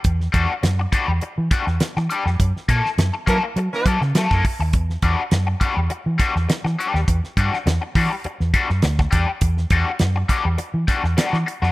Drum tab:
HH |x-x-x-x-x-x-x-x-|x-x-x-x-x-x-x-o-|x-x-x-x-x-x-x-x-|x-x-x-o-x-x-x-x-|
SD |-o--o-----oooo-o|-o-oo----o-ooo--|-o--o-----oooo-o|-o-oo----o-ooo--|
BD |o-o---o---o-----|o-o---o---o--oo-|o-o---o---o-----|o-o---o---o--oo-|

HH |x-x-x-x-x-x-x-x-|
SD |-o--o-----oooo-o|
BD |o-o---o---o-----|